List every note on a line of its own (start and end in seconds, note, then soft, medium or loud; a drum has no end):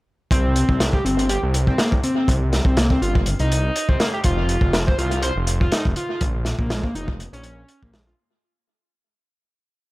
0.31 0.63 C2 loud
0.31 0.79 C4 loud
0.31 kick loud
0.31 closed hi-hat medium
0.56 closed hi-hat medium
0.69 1.00 C2 medium
0.69 kick medium
0.80 snare loud
0.80 closed hi-hat loud
0.93 1.02 G4 loud
0.93 kick medium
1.05 1.37 G1 medium
1.05 1.28 C4 medium
1.05 closed hi-hat medium
1.19 closed hi-hat soft
1.29 1.40 G4 medium
1.29 closed hi-hat medium
1.43 1.74 C2 medium
1.54 closed hi-hat medium
1.67 1.78 C4 medium
1.67 kick medium
1.78 1.89 A#3 medium
1.78 snare loud
1.78 closed hi-hat medium
1.92 2.01 C2 medium
1.92 kick loud
2.03 2.15 C4 medium
2.03 closed hi-hat medium
2.17 2.27 C4 medium
2.28 2.60 C2 loud
2.28 kick loud
2.28 closed hi-hat medium
2.53 snare medium
2.53 closed hi-hat medium
2.65 2.97 C2 medium
2.65 2.77 C4 medium
2.65 kick medium
2.77 2.87 A#3 medium
2.77 snare loud
2.77 closed hi-hat medium
2.90 3.01 C4 medium
2.90 kick loud
3.02 3.34 G1 medium
3.02 3.12 F4 loud
3.02 closed hi-hat medium
3.15 kick loud
3.26 closed hi-hat medium
3.39 3.71 C2 medium
3.39 3.88 D#4 loud
3.39 closed hi-hat soft
3.52 closed hi-hat medium
3.76 closed hi-hat medium
3.89 3.97 C2 medium
3.89 3.99 C4 medium
3.89 kick loud
4.00 4.06 A#3 medium
4.00 snare loud
4.00 closed hi-hat medium
4.13 4.19 G4 medium
4.24 4.57 F1 loud
4.24 4.73 F4 loud
4.24 kick loud
4.24 closed hi-hat medium
4.49 closed hi-hat medium
4.61 4.93 F1 medium
4.61 kick medium
4.73 snare loud
4.73 closed hi-hat medium
4.87 4.96 C5 loud
4.87 kick loud
4.98 5.31 C2 medium
4.98 5.22 F4 medium
4.98 closed hi-hat medium
5.11 closed hi-hat soft
5.22 5.33 C5 medium
5.22 closed hi-hat medium
5.36 5.67 F1 medium
5.47 closed hi-hat medium
5.61 5.71 F4 medium
5.61 kick medium
5.72 5.82 D#4 medium
5.72 snare loud
5.72 closed hi-hat medium
5.85 5.94 F1 medium
5.85 kick loud
5.96 6.09 F4 medium
5.96 closed hi-hat medium
6.10 6.21 F4 medium
6.21 6.54 A#1 loud
6.21 kick loud
6.21 closed hi-hat medium
6.45 snare medium
6.45 closed hi-hat medium
6.59 6.90 A#1 medium
6.59 6.70 A#3 medium
6.59 kick medium
6.70 6.81 G#3 medium
6.70 snare loud
6.70 closed hi-hat medium
6.84 6.94 A#3 medium
6.84 kick loud
6.95 7.27 F1 medium
6.95 7.05 D#4 loud
6.95 closed hi-hat medium
7.08 kick medium
7.20 closed hi-hat medium
7.33 7.64 A#1 medium
7.33 7.81 C#4 loud
7.33 closed hi-hat soft
7.43 closed hi-hat medium
7.68 closed hi-hat medium
7.83 8.14 A#1 loud
7.83 7.92 A#3 medium
7.83 kick loud
7.93 8.00 G#3 medium
7.93 snare loud
7.93 closed hi-hat medium
8.07 8.12 F4 medium